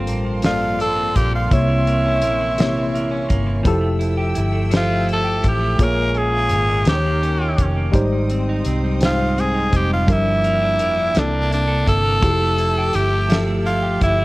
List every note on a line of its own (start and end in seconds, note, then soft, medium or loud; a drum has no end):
0.00 0.42 G2 medium
0.00 0.24 F3 medium
0.00 0.38 G3 medium
0.00 3.62 A#3 medium
0.00 0.96 C4 medium
0.00 0.38 F4 medium
0.00 0.38 A4 medium
0.00 0.39 A#4 medium
0.00 0.43 C5 medium
0.00 1.49 F5 medium
0.00 1.49 A5 medium
0.00 3.61 C6 medium
0.07 1.12 A1 medium
0.07 0.78 A#3 medium
0.07 closed hi-hat medium
0.25 0.60 F3 soft
0.42 1.58 G2 medium
0.42 1.45 G3 medium
0.42 1.46 A#3 medium
0.42 1.46 F4 medium
0.42 0.78 F4 medium
0.42 1.46 A4 medium
0.42 1.47 D5 medium
0.42 snare loud
0.42 closed hi-hat medium
0.61 1.30 F3 medium
0.79 1.13 A#3 medium
0.79 1.17 A4 loud
0.79 closed hi-hat medium
0.96 1.90 C4 medium
1.14 1.48 A#1 medium
1.14 1.71 A#3 medium
1.14 1.34 G4 loud
1.14 kick medium
1.14 closed hi-hat medium
1.32 1.57 F3 medium
1.32 1.53 F4 medium
1.50 2.23 C2 medium
1.50 2.58 C3 medium
1.50 2.52 C3 medium
1.50 2.53 A#3 medium
1.50 3.30 E4 medium
1.50 2.53 E4 medium
1.50 2.54 C#5 medium
1.50 3.64 E5 medium
1.50 3.63 C#6 medium
1.50 kick loud
1.50 closed hi-hat medium
1.68 2.40 E3 medium
1.87 2.21 A#3 medium
1.87 closed hi-hat soft
2.06 3.10 C#4 medium
2.21 3.26 A#1 medium
2.21 2.93 A#3 medium
2.21 closed hi-hat medium
2.40 2.76 E3 medium
2.58 3.60 C3 medium
2.58 3.73 C3 medium
2.58 3.60 A#3 medium
2.58 3.61 E4 medium
2.58 3.61 C#5 medium
2.58 snare loud
2.58 closed hi-hat medium
2.76 3.46 E3 medium
2.94 3.27 A#3 medium
2.94 closed hi-hat soft
3.11 3.72 C#4 medium
3.29 3.62 G1 loud
3.29 3.72 A#3 medium
3.29 kick medium
3.29 closed hi-hat medium
3.47 3.63 E3 medium
3.63 4.33 F1 medium
3.63 4.70 F3 medium
3.63 4.67 F3 medium
3.63 4.67 E4 loud
3.63 4.68 G4 medium
3.63 5.77 A4 medium
3.63 6.83 E5 medium
3.63 5.77 G5 medium
3.63 5.77 E6 medium
3.63 kick loud
3.63 closed hi-hat medium
3.68 4.68 A4 loud
3.81 4.51 A3 medium
3.99 4.34 E4 medium
3.99 closed hi-hat medium
4.18 5.23 G4 medium
4.35 5.41 G1 medium
4.35 5.05 E4 medium
4.35 closed hi-hat medium
4.52 4.88 A3 medium
4.71 5.86 F3 medium
4.71 5.74 F3 medium
4.71 5.75 G4 medium
4.71 5.75 C5 medium
4.71 5.74 E5 medium
4.71 snare loud
4.71 closed hi-hat medium
4.76 5.08 F4 medium
4.89 5.59 A3 medium
5.07 5.41 E4 medium
5.07 closed hi-hat soft
5.13 5.44 A4 medium
5.24 5.86 G4 medium
5.43 5.76 A1 medium
5.43 5.86 E4 medium
5.43 kick medium
5.43 closed hi-hat medium
5.48 5.84 G4 medium
5.60 5.86 A3 medium
5.78 6.53 A#1 medium
5.78 6.93 A#2 medium
5.78 6.81 A#3 medium
5.78 6.81 F4 medium
5.78 6.82 G#4 medium
5.78 7.92 A#4 medium
5.78 6.82 C#5 medium
5.78 6.85 G#5 medium
5.78 7.91 C#6 medium
5.78 kick loud
5.78 closed hi-hat medium
5.82 6.19 A#4 loud
5.97 6.67 G#3 medium
6.15 6.50 C#4 medium
6.15 6.88 G#4 loud
6.15 closed hi-hat medium
6.33 6.94 F4 medium
6.50 6.83 G#1 medium
6.50 6.94 C#4 medium
6.50 closed hi-hat medium
6.68 6.94 G#3 medium
6.85 7.54 D#2 medium
6.85 7.88 D#3 medium
6.85 8.12 D#3 medium
6.85 7.88 D#4 medium
6.85 7.89 G4 medium
6.85 7.64 G4 medium
6.85 6.94 C5 soft
6.85 7.91 D#5 medium
6.85 7.92 G5 medium
6.85 snare loud
6.85 closed hi-hat medium
6.95 7.93 C#5 medium
7.06 7.76 A#3 medium
7.22 7.58 C#4 medium
7.22 closed hi-hat soft
7.41 9.05 G4 medium
7.58 7.91 F1 medium
7.58 8.02 C#4 medium
7.58 kick medium
7.58 closed hi-hat medium
7.77 8.02 A#3 medium
7.92 8.61 G#1 loud
7.92 9.01 G#2 medium
7.92 8.95 G3 loud
7.92 8.95 D#4 medium
7.92 8.96 G4 medium
7.92 10.06 C5 medium
7.92 8.96 C5 loud
7.92 10.06 D#5 medium
7.92 10.06 G5 medium
7.92 10.06 D#6 medium
7.92 kick loud
7.92 closed hi-hat medium
8.12 8.84 G3 medium
8.30 8.65 C4 medium
8.30 closed hi-hat medium
8.49 9.53 D#4 medium
8.65 9.69 C2 medium
8.65 9.36 C4 medium
8.65 closed hi-hat medium
8.84 9.19 G3 medium
9.00 10.05 G#2 medium
9.00 10.02 C4 medium
9.00 10.02 D#4 medium
9.00 10.03 C5 medium
9.00 10.03 G5 medium
9.00 snare loud
9.00 closed hi-hat medium
9.04 9.41 F4 loud
9.19 9.89 G3 medium
9.37 9.70 C4 medium
9.37 9.77 G#4 medium
9.37 closed hi-hat soft
9.54 10.15 D#4 medium
9.71 10.08 F1 medium
9.71 10.15 C4 medium
9.71 kick medium
9.71 closed hi-hat medium
9.75 9.92 G4 medium
9.90 10.25 G3 medium
9.90 10.12 F4 medium
10.06 10.80 G1 loud
10.06 11.21 G2 medium
10.06 11.10 F3 medium
10.06 11.09 G3 medium
10.06 12.21 A#3 medium
10.06 11.10 D4 medium
10.06 11.11 A#4 medium
10.06 11.14 D5 medium
10.06 11.15 G5 medium
10.06 12.21 D6 medium
10.06 kick loud
10.06 closed hi-hat medium
10.11 11.20 E4 loud
10.25 10.95 F3 medium
10.44 10.77 A#3 medium
10.44 closed hi-hat medium
10.61 11.22 D4 medium
10.78 11.12 F1 medium
10.78 11.22 A#3 medium
10.78 closed hi-hat medium
10.96 11.22 F3 medium
11.14 11.83 C2 medium
11.14 12.16 C3 medium
11.14 12.29 C3 medium
11.14 12.17 A#3 medium
11.14 12.17 D4 medium
11.14 11.53 D4 loud
11.14 12.18 E4 medium
11.14 12.18 A4 medium
11.14 12.20 E5 medium
11.14 12.20 A5 medium
11.14 snare loud
11.14 closed hi-hat medium
11.33 12.03 A#3 medium
11.50 11.85 D4 medium
11.50 11.86 E4 medium
11.50 closed hi-hat soft
11.68 12.78 A4 medium
11.87 12.20 G1 loud
11.87 12.58 E4 medium
11.87 12.97 A4 loud
11.87 kick medium
11.87 closed hi-hat medium
12.04 12.29 A#3 medium
12.21 12.91 F1 medium
12.21 13.24 F3 medium
12.21 13.28 F3 loud
12.21 13.24 E4 medium
12.21 14.25 G4 medium
12.21 13.25 G4 medium
12.21 12.30 G#4 medium
12.21 14.25 E5 medium
12.21 14.25 A5 medium
12.21 14.25 E6 medium
12.21 kick loud
12.21 closed hi-hat medium
12.32 13.29 A4 medium
12.41 13.12 A3 medium
12.58 12.94 E4 medium
12.58 closed hi-hat medium
12.78 13.81 G4 medium
12.93 13.98 G1 medium
12.93 13.64 E4 medium
12.93 13.39 G4 loud
12.93 closed hi-hat medium
13.12 13.46 A3 medium
13.29 14.25 F3 medium
13.29 14.25 G4 medium
13.29 14.25 A4 medium
13.29 14.25 E5 medium
13.29 snare loud
13.29 closed hi-hat medium
13.47 14.19 A3 medium
13.65 14.00 E4 medium
13.65 13.99 F4 loud
13.65 closed hi-hat soft
13.83 14.25 G4 medium
14.01 14.25 G1 loud
14.01 14.25 E4 medium
14.01 14.25 E4 loud
14.01 kick medium
14.01 closed hi-hat medium
14.20 14.25 A3 medium